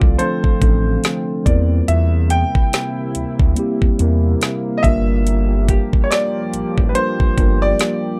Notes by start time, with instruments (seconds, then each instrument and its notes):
Already playing: ambient pad D3 C4 F4, tine electric piano F3 A3 C4 D4 A4, grand piano D5
0.02 analog synth bass C2, kick
0.18 tine electric piano F3 A3 C4 D4, harp A4, grand piano C5, closed hi-hat
0.22 tine electric piano A4
0.44 analog synth bass A1, kick
0.60 analog synth bass A1, tine electric piano F3 A3 C4 D4, kick, closed hi-hat
0.64 tine electric piano A4
1.04 snare, closed hi-hat
1.44 analog synth bass E2, ambient pad C3 A#3 E4, tine electric piano G3 A#3 C4 E4, grand piano D5, kick, closed hi-hat
1.48 tine electric piano A#4
1.88 analog synth bass E2, grand piano E5, closed hi-hat
2.30 grand piano G5, closed hi-hat
2.55 analog synth bass D2, kick
2.73 snare, closed hi-hat
3.15 analog synth bass D2, closed hi-hat
3.39 analog synth bass D2, kick
3.55 tine electric piano G3 A#3 C4 E4 G4, closed hi-hat
3.82 analog synth bass E2, kick
3.98 analog synth bass E2, tine electric piano G3 A#3 C4 E4, closed hi-hat
4.02 tine electric piano A#4
4.41 snare, closed hi-hat
4.78 grand piano D#5
4.82 analog synth bass G1, ambient pad F3 G4, tine electric piano G3 A#3 D4 F4, grand piano E5, kick, closed hi-hat
4.87 tine electric piano A#4
5.27 closed hi-hat
5.69 harp G4, kick, closed hi-hat
5.93 analog synth bass A1, kick
6.04 grand piano C#5
6.11 grand piano D5, snare, closed hi-hat
6.53 analog synth bass A1, closed hi-hat
6.78 analog synth bass A1, kick
6.89 grand piano B4
6.94 tine electric piano G3 A#3 D4 F4, grand piano C5, closed hi-hat
6.98 tine electric piano A#4
7.20 analog synth bass G1, kick
7.36 analog synth bass G1, tine electric piano G3 A#3 D4 F4, kick, closed hi-hat
7.40 tine electric piano A#4
7.62 grand piano D5
7.79 snare, closed hi-hat